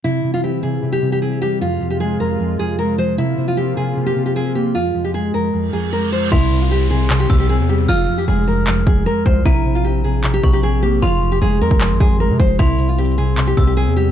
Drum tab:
CC |------------------------------------------------|------------------------------------------------|------------------------------------------------|------------------------------------------------|
HH |------------------------------------------------|------------------------------------------------|------------------------------------------------|------------------------------------------------|
CP |------------------------------------------------|------------------------------------------------|------------------------------------------------|------------------------------------------------|
BD |------------------------------------------------|------------------------------------------------|------------------------------------------------|------------------------------------------------|

CC |x-----------------------------------------------|------------------------------------------------|------------------------------------------------|------------------------------------------------|
HH |------------------------------------------------|------------------------------------------------|------------------------------------------------|------------------------------------------------|
CP |------------------------x-----------------------|------------------------x-----------------------|------------------------x-----------------------|------------------------x-----------------------|
BD |o-----------------------------o-----------------|------------------------------o-----------o-----|o-----------------------------o-----------------|---------------------o--------o-----------o-----|

CC |------------------------------------------------|
HH |x-----x-----x-x-x-x-----x-----x-----x-----x-----|
CP |------------------------x-----------------------|
BD |o-----------------------------o-----------------|